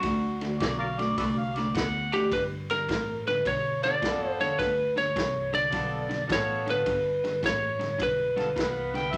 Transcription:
Already playing: F#4
0.03 D2 D3 A3, kick, snare, ride
0.41 D3 A3, snare, ride
0.60 B1 D3 B3 D5, kick, snare, ride
0.79 A#4 D5 F5
0.99 D3 A3 D5, snare, ride
1.18 C2 D3 A3 A4 B4 D5, kick, snare, ride
1.39 F5
1.56 D3 A3 D5, snare, ride
1.75 D2 D3 B3 F#5, kick, snare, ride
2.12 D3 A3 G4, snare, ride
2.31 G2 D3 B4, kick, snare, ride
2.70 G2 D3 A#4, snare, ride
2.89 G2 A2 E3, kick, snare, ride
3.27 G2 D3 B4, snare, ride
3.45 G2 B2 D3 C#5, kick, ride
3.82 G2 D3 B3 F4 A4 D5, snare, ride
4.01 E2 G2 E3 B3 F4 A4, kick, snare, ride
4.29 C5
4.40 G2 D3 C#5, snare, ride
4.59 D2 G2 D3 B4, kick, snare, ride
4.96 G2 D3 C#5, snare, ride
5.16 C2 G2 E3, kick, snare, ride
5.53 G2 D3 D5, snare, ride
5.71 B1 G2 D3 B3 F4 A4, kick, snare, ride
6.09 G2 D3, snare, ride
6.27 A1 G2 E3 B3 F4 A4, kick, ride
6.32 C#5, snare
6.67 G2 D3 B4, snare, ride
6.86 G1 G2 D3, kick, ride
7.24 G2 D3, snare, ride
7.43 A1 G2 E3 C#5, kick, snare, ride
7.79 G2 D3, snare, ride
7.98 B1 G2 D3, kick, snare, ride
8.03 B4
8.36 G2 D3 B3 F4 A4, snare, ride
8.56 C2 G2 E3 B3 F4 B4, kick, snare, ride
8.94 G2 D3 G5, snare, ride
9.12 D2 G2 D3 E5, kick, ride

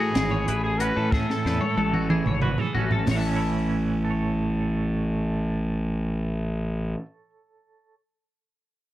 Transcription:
Already playing: A2 E3 E4 G#4
0.00 F#4
0.15 G#1 E3 G#4, snare, closed hi-hat
0.31 C#5
0.48 A1 E4 B4, closed hi-hat
0.64 G#4
0.79 C#4 F#4 B4, closed hi-hat
0.97 A2 A4
1.12 A2 G#4 A4, kick, snare
1.30 A4, snare
1.45 E2 E4 B4, snare
1.61 C#5, high tom
1.77 A1 E3 A4, high tom
1.94 F#4, mid tom
2.10 E3 G#4, mid tom
2.26 G#1 C#5, mid tom
2.42 F#4 B4, mid tom
2.58 G#4 A4, floor tom
2.75 A1 C#4 F#4, floor tom
2.91 A4, floor tom
3.07 A1 A2, snare, floor tom, open hi-hat
3.11 C#5
3.16 E3 E5 A5
3.27 C#4
3.36 E4
4.05 A4
4.11 C#5

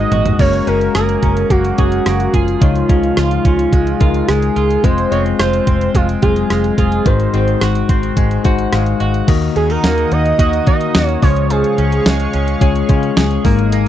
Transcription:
Already playing: G#2 D#3 G#3 C4 D#4 F#4 A#4 C5 D#5
0.11 G#1 F#4, closed hi-hat, mid tom
0.26 closed hi-hat, floor tom
0.39 F#1 G#3 A#3 C#4 F#4 A#4 C#5, kick, crash
0.53 closed hi-hat
0.67 F#1 G#3 C#4 F#4 A#4, closed hi-hat
0.81 closed hi-hat
0.95 F#1 G#4 A#4, cross-stick, closed hi-hat
1.09 closed hi-hat
1.23 F#1 C#4, kick, closed hi-hat
1.37 closed hi-hat
1.50 F#1 A#3 F#4, kick, closed hi-hat
1.65 closed hi-hat
1.78 F#1 G#3 C#4 F#4 G#4 A#4, kick, closed hi-hat
1.92 closed hi-hat
2.06 F#1 A#3, cross-stick, closed hi-hat
2.20 closed hi-hat
2.34 F#1 F4 G#4, kick, closed hi-hat
2.48 closed hi-hat
2.61 C#2 C#3 D#3 G#3 D#4 F4 C#5, kick, closed hi-hat
2.75 closed hi-hat
2.89 C#2 G#3 C#4 D#4 F4 G#4, kick, closed hi-hat
3.03 closed hi-hat
3.17 C#2 F4, cross-stick, closed hi-hat
3.31 closed hi-hat
3.45 C#2 C#4, kick, closed hi-hat
3.59 closed hi-hat
3.72 C#2 G#3, kick, closed hi-hat
3.87 closed hi-hat
4.00 C#2 G#3 D#4 F4 A#4, kick, closed hi-hat
4.14 closed hi-hat
4.28 C#2 G#3 G#4, cross-stick, closed hi-hat
4.42 closed hi-hat
4.56 C#2 F4, closed hi-hat
4.70 closed hi-hat
4.83 F1 G#3 C4 F4 C5, kick, closed hi-hat
4.98 closed hi-hat
5.11 F1 G#3 C4 F4 C#5 D#5, closed hi-hat
5.26 closed hi-hat
5.39 F1 F4 C5, cross-stick, closed hi-hat
5.53 closed hi-hat
5.67 F1 C4, kick, closed hi-hat
5.81 closed hi-hat
5.95 F1 G#3 F4, kick, closed hi-hat
6.09 closed hi-hat
6.22 F1 F#3 C4 F4 G#4 C5, kick, closed hi-hat
6.28 G#3
6.36 closed hi-hat
6.50 F1 G#3, cross-stick, closed hi-hat
6.64 closed hi-hat
6.78 F1 F4 G#4, kick, closed hi-hat
6.92 closed hi-hat
7.05 G#1 G#2 D#3 G#3 D#4 F#4 C5, kick, closed hi-hat
7.20 closed hi-hat
7.33 G#1 G#3 C4 D#4 F#4 C5, closed hi-hat
7.48 closed hi-hat
7.61 G#1 F#4, cross-stick, closed hi-hat
7.75 closed hi-hat
7.89 G#1 C4 C6, kick, closed hi-hat
8.03 closed hi-hat
8.17 G#1 G#3 G#5, kick, closed hi-hat
8.31 closed hi-hat
8.44 G#1 G#3 D#4 F#4 C5 F#5, kick, closed hi-hat
8.59 closed hi-hat
8.72 G#1 G#3 F5, cross-stick, closed hi-hat
8.86 closed hi-hat
9.00 G#1 F#4 D#5, closed hi-hat
9.14 closed hi-hat
9.27 D#2 D#3 A#3 D#4 F#4 A#4 D#5 F#5 D#6, kick, closed hi-hat, crash
9.42 closed hi-hat
9.56 D#2 C#4 G#4, closed hi-hat
9.70 D#4 A#4, closed hi-hat
9.84 D#2 A#3, snare, closed hi-hat
9.98 closed hi-hat
10.12 D#2 D#4 D#5, closed hi-hat
10.26 closed hi-hat
10.39 D#2 A#3 D#4 F#4 D#5 F#5, kick, closed hi-hat
10.53 closed hi-hat
10.66 D#3 A#3 D#4 F#4 D#5, kick, closed hi-hat
10.81 closed hi-hat
10.95 D#2 F#4, snare, closed hi-hat
11.07 C#5, closed hi-hat
11.22 C#2 C#3 F3 G#3 C#4 F4 G#4 C#5 F5 C#6, kick, open hi-hat
11.36 closed hi-hat
11.50 F3 G#4, closed hi-hat
11.64 closed hi-hat
11.78 C#2 C#4, closed hi-hat
11.92 closed hi-hat
12.06 C#2 G#3, snare, closed hi-hat
12.20 closed hi-hat
12.33 C#2 C#4, closed hi-hat
12.48 closed hi-hat
12.61 C#2 G#3 C#4 F4 G#4 C#5, kick, closed hi-hat
12.76 closed hi-hat
12.89 C#3 G#3 C#4 F4 C#5, kick, closed hi-hat
13.03 closed hi-hat
13.17 C#2 G#4, snare, closed hi-hat
13.31 closed hi-hat
13.44 G#1 G#2 G#3 A#3 D#4 A#4 D#5 G#5 D#6, kick, open hi-hat
13.59 closed hi-hat
13.72 A#3, closed hi-hat

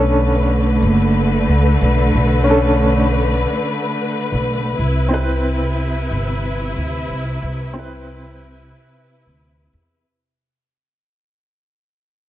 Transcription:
Already playing: B1 D3 A3 C#4 D4 A4 B4
0.82 F#1
1.48 C#2
1.81 B1
2.15 B1
2.44 C#4 D4
2.50 A4
4.32 B1
4.78 C2 C3 E4
5.08 C4 E4
5.14 B4
6.10 G1
6.76 D2
7.09 C2
7.42 C2
7.73 C4 E4
7.79 B4
9.26 D2
9.73 E2

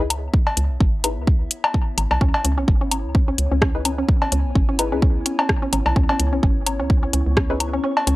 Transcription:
Already playing: C#2 B3 E4 C#5 E5
0.10 closed hi-hat, low woodblock
0.34 kick
0.47 cowbell
0.57 C#2, closed hi-hat
0.70 B1
0.80 G#1, kick
1.04 D#4 E4 G#4 B4, closed hi-hat, low woodblock
1.17 C#2
1.27 kick
1.51 closed hi-hat
1.64 cowbell, low woodblock
1.74 kick
1.98 G#1, closed hi-hat, low woodblock
2.11 B1, cowbell, low woodblock
2.21 C#2 C#4, kick
2.34 cowbell
2.45 C#2 C#4 G#5, closed hi-hat
2.58 B1 C#4
2.68 G#1, kick
2.81 C#4
2.91 C#4, closed hi-hat, low woodblock
3.05 C#2
3.15 C#4, kick
3.28 C#4
3.38 C#2, closed hi-hat
3.51 C#2 C#4
3.62 C#4, kick, cross-stick
3.75 D#4 E4 G#4 B4
3.85 C#4, closed hi-hat, low woodblock
3.98 C#4
4.09 kick
4.22 C#4, cowbell
4.32 C#2 C#4, closed hi-hat
4.45 B1
4.55 G#1 C#4, kick
4.69 C#4
4.79 D#4 E4 G#4 B4, closed hi-hat, low woodblock
4.92 C#2 C#4 D#4 E4 G#4 B4
5.02 C#4, kick
5.26 C#4, closed hi-hat
5.39 C#4, cowbell, low woodblock
5.49 kick, cross-stick
5.62 C#4
5.73 G#1 C#4, closed hi-hat, low woodblock
5.86 B1, cowbell, low woodblock
5.96 C#2 C#4, kick
6.09 C#4, cowbell
6.20 C#2 C#6, closed hi-hat
6.33 B1 C#4
6.43 G#1 C#4, kick
6.66 C#4, closed hi-hat, low woodblock
6.80 C#2 C#4
6.90 kick
7.03 C#4
7.13 C#2 C#4, closed hi-hat
7.27 C#2
7.37 C#4, kick, cross-stick
7.50 C#4 D#4 E4 G#4 B4
7.60 closed hi-hat, low woodblock
7.73 C#4
7.84 C#4
7.97 cowbell
8.07 C#2 C#4, closed hi-hat

